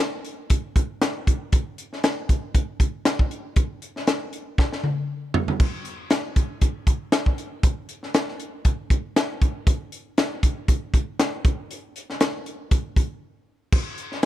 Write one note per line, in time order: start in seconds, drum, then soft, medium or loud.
0.25 closed hi-hat medium
0.50 kick medium
0.50 closed hi-hat medium
0.76 kick medium
0.76 closed hi-hat medium
1.02 snare loud
1.02 closed hi-hat loud
1.27 kick medium
1.27 closed hi-hat medium
1.52 kick loud
1.52 closed hi-hat medium
1.78 closed hi-hat medium
1.93 snare soft
2.04 snare loud
2.04 closed hi-hat medium
2.29 kick medium
2.29 closed hi-hat medium
2.54 kick medium
2.54 closed hi-hat medium
2.80 kick medium
2.80 closed hi-hat medium
3.05 snare loud
3.05 closed hi-hat medium
3.19 kick medium
3.31 closed hi-hat medium
3.56 kick loud
3.56 closed hi-hat medium
3.82 closed hi-hat medium
3.96 snare soft
4.07 snare loud
4.07 closed hi-hat medium
4.33 closed hi-hat medium
4.58 kick medium
4.58 snare medium
4.72 snare soft
4.83 high tom medium
5.34 floor tom medium
5.48 floor tom medium
5.60 kick loud
5.60 crash medium
5.85 closed hi-hat medium
6.10 snare loud
6.10 closed hi-hat medium
6.36 kick medium
6.36 closed hi-hat medium
6.61 kick medium
6.61 closed hi-hat medium
6.87 kick medium
6.87 closed hi-hat medium
7.12 snare loud
7.12 closed hi-hat loud
7.26 kick medium
7.38 closed hi-hat medium
7.63 kick loud
7.63 closed hi-hat medium
7.89 closed hi-hat medium
8.03 snare soft
8.14 snare loud
8.14 closed hi-hat medium
8.28 snare soft
8.40 closed hi-hat medium
8.65 kick medium
8.65 closed hi-hat medium
8.90 kick medium
8.90 closed hi-hat medium
9.16 snare loud
9.16 closed hi-hat medium
9.42 kick medium
9.42 closed hi-hat medium
9.67 kick loud
9.67 closed hi-hat medium
9.92 closed hi-hat medium
10.18 snare loud
10.18 closed hi-hat medium
10.43 kick medium
10.43 closed hi-hat medium
10.68 kick medium
10.68 closed hi-hat medium
10.94 kick medium
10.94 closed hi-hat medium
11.20 snare loud
11.20 closed hi-hat medium
11.45 kick loud
11.45 closed hi-hat medium
11.71 closed hi-hat medium
11.96 closed hi-hat medium
12.10 snare soft
12.21 snare loud
12.21 closed hi-hat medium
12.46 closed hi-hat medium
12.71 kick loud
12.71 closed hi-hat medium
12.96 kick loud
12.96 closed hi-hat medium
13.72 kick loud
13.72 crash loud
13.98 closed hi-hat medium
14.12 snare soft